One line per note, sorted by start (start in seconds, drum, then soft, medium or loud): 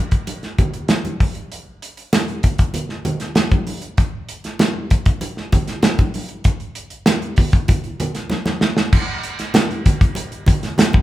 0.11 kick medium
0.11 closed hi-hat medium
0.27 closed hi-hat medium
0.27 muted conga soft
0.43 snare soft
0.43 closed hi-hat soft
0.58 kick medium
0.58 closed hi-hat medium
0.58 muted conga medium
0.58 low conga medium
0.74 closed hi-hat soft
0.88 snare loud
0.88 closed hi-hat medium
0.88 high conga medium
1.05 closed hi-hat soft
1.05 high conga medium
1.20 kick medium
1.20 open hi-hat medium
1.20 high conga soft
1.35 closed hi-hat soft
1.52 closed hi-hat medium
1.82 closed hi-hat medium
1.97 closed hi-hat medium
2.13 snare loud
2.13 closed hi-hat loud
2.13 high conga medium
2.28 closed hi-hat soft
2.43 kick medium
2.43 closed hi-hat medium
2.43 muted conga soft
2.43 low conga medium
2.58 kick medium
2.58 closed hi-hat medium
2.74 closed hi-hat medium
2.74 muted conga soft
2.74 low conga medium
2.89 snare soft
3.05 closed hi-hat medium
3.05 muted conga medium
3.05 low conga medium
3.20 snare soft
3.20 closed hi-hat soft
3.35 snare loud
3.35 closed hi-hat medium
3.35 high conga medium
3.51 kick medium
3.51 closed hi-hat soft
3.51 high conga medium
3.67 open hi-hat medium
3.67 high conga soft
3.82 closed hi-hat soft
3.97 kick loud
3.97 closed hi-hat medium
4.29 closed hi-hat medium
4.44 snare soft
4.44 closed hi-hat medium
4.59 snare loud
4.59 closed hi-hat medium
4.59 high conga medium
4.90 kick medium
4.90 closed hi-hat medium
4.90 muted conga soft
5.06 kick medium
5.06 closed hi-hat medium
5.21 closed hi-hat medium
5.21 muted conga soft
5.37 snare soft
5.52 kick medium
5.52 closed hi-hat medium
5.52 muted conga medium
5.52 low conga medium
5.67 snare soft
5.67 closed hi-hat soft
5.83 snare loud
5.83 closed hi-hat medium
5.83 high conga medium
5.98 kick medium
5.98 closed hi-hat soft
5.98 high conga medium
6.14 open hi-hat medium
6.14 high conga soft
6.29 closed hi-hat soft
6.44 kick medium
6.44 closed hi-hat medium
6.60 closed hi-hat soft
6.75 closed hi-hat medium
6.90 closed hi-hat soft
7.06 snare loud
7.06 closed hi-hat loud
7.06 high conga medium
7.22 closed hi-hat soft
7.36 kick medium
7.36 open hi-hat medium
7.36 muted conga soft
7.36 low conga medium
7.52 kick medium
7.52 closed hi-hat medium
7.68 kick medium
7.68 closed hi-hat medium
7.68 muted conga soft
7.68 low conga medium
7.84 closed hi-hat soft
8.00 closed hi-hat medium
8.00 muted conga medium
8.00 low conga medium
8.15 snare soft
8.15 closed hi-hat medium
8.30 snare medium
8.30 high conga medium
8.46 snare medium
8.46 high conga medium
8.61 snare medium
8.61 high conga soft
8.77 snare medium
8.92 kick loud
8.92 crash medium
9.23 closed hi-hat medium
9.39 snare soft
9.39 closed hi-hat medium
9.54 snare loud
9.54 closed hi-hat loud
9.54 high conga medium
9.71 closed hi-hat soft
9.86 kick medium
9.86 closed hi-hat medium
9.86 low conga medium
10.01 kick medium
10.01 closed hi-hat medium
10.15 closed hi-hat medium
10.15 muted conga soft
10.32 closed hi-hat soft
10.46 kick medium
10.46 closed hi-hat medium
10.46 muted conga medium
10.46 low conga medium
10.63 snare soft
10.63 closed hi-hat medium
10.78 snare loud
10.78 closed hi-hat medium
10.78 high conga medium
10.93 kick medium
10.93 high conga medium